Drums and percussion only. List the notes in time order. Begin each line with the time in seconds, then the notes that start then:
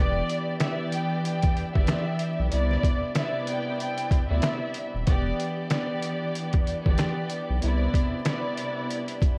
0.29 closed hi-hat
0.60 finger snap, snare, closed hi-hat
0.92 closed hi-hat
1.25 closed hi-hat
1.42 kick, closed hi-hat
1.57 closed hi-hat
1.75 kick
1.87 finger snap, snare, closed hi-hat
2.19 closed hi-hat
2.52 closed hi-hat
2.71 snare
2.83 kick, closed hi-hat
3.15 finger snap, snare, closed hi-hat
3.47 closed hi-hat
3.80 closed hi-hat
3.98 closed hi-hat
4.11 kick, closed hi-hat
4.42 finger snap, snare, closed hi-hat
4.75 closed hi-hat
5.07 kick, closed hi-hat
5.40 closed hi-hat
5.70 finger snap, snare, closed hi-hat
6.03 closed hi-hat
6.36 closed hi-hat
6.53 kick, closed hi-hat
6.67 closed hi-hat
6.86 kick
6.98 finger snap, snare, closed hi-hat
7.30 closed hi-hat
7.62 closed hi-hat
7.94 kick, closed hi-hat
8.25 finger snap, snare, closed hi-hat
8.58 closed hi-hat
8.91 closed hi-hat
9.08 closed hi-hat
9.22 kick, closed hi-hat